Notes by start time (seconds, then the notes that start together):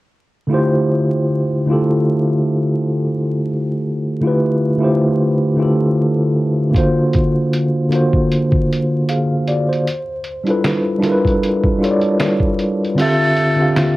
0.47 D3 A3 E4
0.51 F4 G4 C5
1.66 D3 A3 E4
1.70 F4 G4 A4
4.20 D3 A3 E4 F4
4.26 G4 B4
4.77 D3 A3 E4
4.82 F4 G4 C5
5.56 D3 A3 E4 F4
5.61 G4 A4
6.71 D3 A#3, kick
6.75 F4 F#4 C5, closed hi-hat
7.13 kick, closed hi-hat
7.53 closed hi-hat
7.88 D3 A#3 F4, closed hi-hat
7.94 F#4 C5
8.13 kick
8.32 closed hi-hat
8.52 kick
8.72 closed hi-hat
9.09 G#4 F5, closed hi-hat
9.47 F#4 D5, closed hi-hat
9.69 C5, closed hi-hat
9.87 closed hi-hat
10.24 closed hi-hat
10.44 G3 D4 E4 F4, closed hi-hat
10.49 A4 B4
10.64 finger snap, snare, closed hi-hat
10.99 G3 D4 E4 F4, snare
11.03 A4 A#4, closed hi-hat
11.12 B4
11.25 kick, closed hi-hat
11.43 closed hi-hat
11.64 kick
11.78 G3 D4 E4 F4
11.83 A4 C#5, closed hi-hat
11.91 D5
12.02 closed hi-hat
12.20 finger snap, snare, closed hi-hat
12.40 kick
12.59 closed hi-hat
12.85 closed hi-hat
12.95 D3 C4 F4, crash
12.99 G4 A4 E5, closed hi-hat
13.37 closed hi-hat
13.56 D3 C4 F4
13.61 G4 F5
13.76 finger snap, snare, closed hi-hat